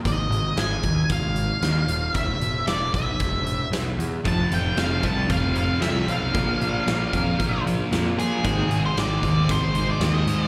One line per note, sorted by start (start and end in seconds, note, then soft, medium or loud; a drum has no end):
0.05 0.25 G#1 medium
0.05 0.60 D#5 medium
0.05 kick medium
0.05 closed hi-hat medium
0.30 0.50 G#1 medium
0.30 closed hi-hat medium
0.56 0.76 G#1 medium
0.56 1.12 G#5 loud
0.56 snare loud
0.56 closed hi-hat medium
0.83 1.04 D#2 medium
0.83 kick medium
0.83 closed hi-hat medium
1.09 1.50 G#1 medium
1.09 2.12 F5 medium
1.09 kick loud
1.09 closed hi-hat medium
1.36 closed hi-hat medium
1.61 1.82 D#2 medium
1.61 snare medium
1.61 closed hi-hat medium
1.87 2.08 D#1 medium
1.87 closed hi-hat medium
2.14 2.35 E1 medium
2.14 2.67 E5 medium
2.14 kick medium
2.14 closed hi-hat medium
2.40 2.60 E1 medium
2.40 closed hi-hat medium
2.67 2.87 E1 medium
2.67 2.94 D5 medium
2.67 snare loud
2.67 closed hi-hat medium
2.94 3.14 B1 medium
2.94 3.69 E5 medium
2.94 kick medium
2.94 closed hi-hat medium
3.20 3.61 E1 medium
3.20 kick loud
3.20 closed hi-hat medium
3.47 closed hi-hat medium
3.71 3.92 B1 medium
3.71 snare loud
3.71 closed hi-hat medium
3.98 4.18 E2 medium
3.98 closed hi-hat medium
4.24 4.46 F1 medium
4.24 4.50 F2 medium
4.24 4.51 C3 medium
4.24 4.52 F3 medium
4.24 4.53 A5 loud
4.24 kick loud
4.24 closed hi-hat medium
4.51 4.72 F1 medium
4.51 4.76 F2 medium
4.51 4.76 C3 medium
4.51 4.78 F3 loud
4.51 4.77 G5 medium
4.51 closed hi-hat medium
4.77 4.98 F1 medium
4.77 5.02 F2 medium
4.77 5.03 C3 medium
4.77 5.04 F3 medium
4.77 5.05 F5 medium
4.77 snare loud
4.77 closed hi-hat medium
5.03 5.24 C2 medium
5.03 5.27 F2 medium
5.03 5.28 C3 medium
5.03 5.28 F3 medium
5.03 5.31 A5 medium
5.03 kick medium
5.03 closed hi-hat medium
5.28 5.70 F1 medium
5.28 5.52 F2 medium
5.28 5.53 C3 medium
5.28 5.54 F3 medium
5.28 5.56 F5 medium
5.28 kick loud
5.28 closed hi-hat medium
5.53 5.78 F2 medium
5.53 5.79 C3 medium
5.53 5.80 F3 medium
5.53 5.82 F5 medium
5.53 closed hi-hat medium
5.79 6.02 C2 medium
5.79 6.06 F2 medium
5.79 6.06 C3 medium
5.79 6.07 F3 medium
5.79 6.09 E5 medium
5.79 snare loud
5.79 closed hi-hat medium
6.07 6.28 B1 medium
6.07 6.32 F2 medium
6.07 6.32 C3 medium
6.07 6.33 F3 medium
6.07 7.62 F5 medium
6.07 closed hi-hat medium
6.32 6.55 A#1 medium
6.32 6.58 A#2 medium
6.32 6.59 F3 loud
6.32 6.59 A#3 loud
6.32 kick loud
6.32 closed hi-hat medium
6.59 6.81 A#1 medium
6.59 6.85 A#2 medium
6.59 6.85 F3 medium
6.59 6.86 A#3 medium
6.59 closed hi-hat medium
6.86 7.07 A#1 medium
6.86 7.11 A#2 medium
6.86 7.12 F3 medium
6.86 7.12 A#3 medium
6.86 snare loud
6.86 closed hi-hat medium
7.12 7.33 F2 medium
7.12 7.37 A#2 medium
7.12 7.37 F3 medium
7.12 7.38 A#3 medium
7.12 kick medium
7.12 closed hi-hat medium
7.38 7.80 A#1 medium
7.38 7.64 A#2 medium
7.38 7.65 F3 medium
7.38 7.65 A#3 loud
7.38 kick loud
7.38 closed hi-hat medium
7.66 7.91 A#2 medium
7.66 7.91 F3 medium
7.66 7.92 A#3 medium
7.66 closed hi-hat medium
7.92 8.12 F2 medium
7.92 8.16 A#2 medium
7.92 8.17 F3 medium
7.92 8.17 A#3 medium
7.92 snare medium
7.92 closed hi-hat medium
8.17 8.38 A#2 medium
8.17 8.42 A#2 medium
8.17 8.43 F3 medium
8.17 8.43 A#3 medium
8.17 8.80 G#4 medium
8.17 closed hi-hat medium
8.44 8.65 G#1 medium
8.44 8.68 G#2 medium
8.44 8.69 D#3 loud
8.44 8.70 G#3 medium
8.44 kick loud
8.44 closed hi-hat medium
8.69 8.90 G#1 medium
8.69 8.94 G#2 medium
8.69 8.96 D#3 medium
8.69 8.96 G#3 medium
8.69 closed hi-hat medium
8.86 8.97 C5 medium
8.96 9.17 G#1 medium
8.96 9.21 G#2 medium
8.96 9.22 D#3 medium
8.96 9.23 G#3 medium
8.96 9.51 D5 medium
8.96 snare loud
8.96 closed hi-hat medium
9.22 9.43 D#2 medium
9.22 9.47 G#2 medium
9.22 9.48 D#3 medium
9.22 9.49 G#3 medium
9.22 kick medium
9.22 closed hi-hat medium
9.48 9.90 G#1 medium
9.48 9.73 G#2 medium
9.48 9.74 D#3 medium
9.48 9.74 G#3 loud
9.48 9.90 C5 medium
9.48 kick loud
9.48 closed hi-hat loud
9.74 9.99 G#2 medium
9.74 9.99 D#3 medium
9.74 10.01 G#3 medium
9.74 closed hi-hat medium
9.90 10.03 D5 loud
10.00 10.21 D#2 medium
10.00 10.25 G#2 medium
10.00 10.26 D#3 medium
10.00 10.27 G#3 medium
10.00 snare loud
10.00 closed hi-hat medium
10.04 10.42 D#5 loud
10.26 10.47 G#2 medium
10.26 10.48 G#2 medium
10.26 10.48 D#3 medium
10.26 10.48 G#3 medium
10.26 closed hi-hat medium
10.42 10.48 D5 loud